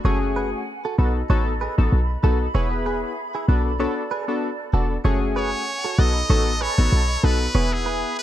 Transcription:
0.05 F#1 A3 C#4 F#4 G#4 A4 C#5 F#5 G#5
0.36 G#4 B4
0.85 F#4 A4
0.98 B1 B3 D#4 F#4 A4 B4 D#5 B5
1.30 A1 B3 D#4 F#4 A4 C#5
1.61 G#4 B4
1.78 A1 B3 D#4 F#4 A4
1.92 B1
2.23 B1 B3 D#4 F#4 A4
2.54 E1 B3 E4 G#4 B4 C#5 E5
2.86 G#4 B4
3.35 E4 G#4
3.48 B1 B3 D4 F#4 A4 B4 D5
3.79 B3 D4 F#4 A4 C#5
4.11 G#4 B4
4.28 B3 D4 F#4 A4
4.73 E1 B3 D4 F#4 A4
5.04 F#1 A3 C#4 F#4 G#4 A4 C#5 F#5 G#5
5.36 G#4 B4 C#5
5.84 F#4 A4
5.98 B1 B3 D#4 F#4 A4 B4 D#5 B5
6.29 A1 B3 D#4 F#4 A4 C#5
6.61 G#4 B4 C#5
6.78 A1 B3 D#4 F#4 A4
6.92 B1
7.23 B1 B3 D#4 F#4 A4 B4
7.54 E1 B3 E4 G#4 B4 C#5 E5 B5
7.73 G#4
7.86 G#4 B4
8.18 B4

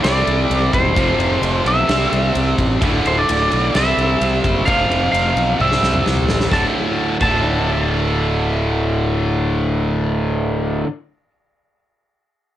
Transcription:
0.03 C2 C3 G3 D5, snare, ride
0.07 C4
0.27 C2, ride
0.50 C2, ride
0.73 E1 C5, kick, ride
0.96 F1 F2 C3 F3, kick, ride
1.18 F1, ride
1.41 F1, ride
1.64 B1 E5, ride
1.88 C2 C3 G3 C4, snare, ride
2.12 C2, ride
2.35 C2, ride
2.58 A1, kick, ride
2.81 D1 D2 A2 D3, kick, ride
3.06 D1 C5, ride
3.19 D5
3.29 D1, ride
3.52 B1, ride
3.74 C2 C3 G3 C4 E5, snare, ride
3.97 C2, ride
4.20 C2, ride
4.44 F#1, kick, ride
4.66 F1 F2 C3 F5, kick, ride
4.70 F3
4.89 F1, ride
5.12 F1 F5, ride
5.36 B1, ride
5.59 C2 C3 G3 C4 E5, high tom
5.72 snare
5.82 C2, snare
5.94 mid tom
6.06 C2, snare
6.17 mid tom
6.29 A1, snare
6.40 snare
6.51 D1 D2 A2 A5, kick, snare
6.55 D3
7.20 D1 D2 A2 A5, kick, crash
7.24 D3

